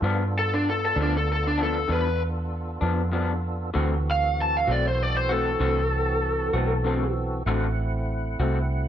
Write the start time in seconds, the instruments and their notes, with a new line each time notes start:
0.00 fingered electric bass G2, clean electric guitar G2 F3 B3 D4, tonewheel organ B3 D4 F4 A4
0.39 lead electric guitar A4
0.54 lead electric guitar D4
0.70 lead electric guitar A4
0.85 lead electric guitar A4
0.96 fingered electric bass D2, clean electric guitar F3 B3 D4
1.02 lead electric guitar D4
1.17 lead electric guitar A4
1.32 lead electric guitar A4
1.47 lead electric guitar D4
1.58 clean electric guitar F3 B3 D4
1.63 lead electric guitar A4
1.88 fingered electric bass E2, clean electric guitar G2 F3 B3 D4, lead electric guitar B4
2.81 fingered electric bass F2, clean electric guitar F3 B3 D4
3.12 clean electric guitar G2 F3 B3 D4
3.74 fingered electric bass D2, clean electric guitar D3 A3 C4 F#4, tonewheel organ E3 C4 F#4 A4
4.11 lead electric guitar F5
4.42 lead electric guitar A5
4.57 lead electric guitar F5
4.67 fingered electric bass B1, clean electric guitar A3 C4 F#4, lead electric guitar D5
4.88 lead electric guitar C5
5.03 lead electric guitar D5
5.17 lead electric guitar C5
5.29 clean electric guitar A3 C4 F#4, lead electric guitar A4
5.60 fingered electric bass C2, clean electric guitar D3 A3 C4 F#4
6.53 fingered electric bass B1, clean electric guitar A3 C4 F#4
6.84 clean electric guitar D3 A3 C4 F#4
7.46 fingered electric bass A1, clean electric guitar D3 A3 C4 F#4, tonewheel organ A3 C4 E4 F#5
8.40 fingered electric bass C2, clean electric guitar A3 C4 F#4